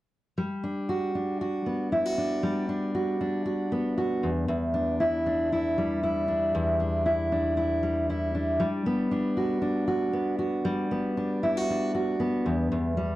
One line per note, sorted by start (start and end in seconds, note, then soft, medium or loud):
0.37 2.43 G3 medium
0.63 1.15 D4 soft
0.89 1.40 F#4 medium
1.15 2.17 D4 soft
1.41 1.92 F#4 soft
1.66 3.72 B3 soft
1.92 2.05 E4 medium
2.05 2.94 F#4 soft
2.18 2.69 D4 soft
2.43 5.78 G3 medium
2.69 3.20 D4 soft
2.95 3.45 F#4 medium
3.21 4.51 D4 soft
3.46 3.96 F#4 soft
3.72 5.77 B3 soft
3.98 4.29 F#4 medium
4.23 4.47 E2 medium
4.48 6.53 E2 medium
4.74 5.26 D4 medium
5.00 5.51 E4 medium
5.26 6.28 D4 soft
5.52 6.02 E4 medium
5.78 7.82 G3 soft
6.03 7.04 E4 medium
6.28 6.79 D4 soft
6.55 8.60 E2 medium
6.80 7.32 D4 soft
7.06 7.56 E4 medium
7.32 8.34 D4 soft
7.57 8.09 E4 medium
7.83 8.60 G3 soft
8.10 8.66 E4 medium
8.35 9.11 D4 soft
8.60 10.64 G3 medium
8.86 10.13 B3 soft
9.11 9.61 D4 medium
9.37 9.86 F#4 medium
9.62 11.17 D4 soft
9.88 10.37 F#4 medium
10.13 10.91 B3 soft
10.39 11.42 F#4 soft
10.65 12.97 G3 medium
10.91 12.19 B3 soft
11.17 11.70 D4 soft
11.43 11.57 E4 medium
11.57 11.93 F#4 soft
11.70 12.75 D4 soft
11.95 12.51 F#4 medium
12.20 12.97 B3 soft
12.46 12.70 E2 medium
12.72 13.16 E2 medium
12.97 13.16 G3 medium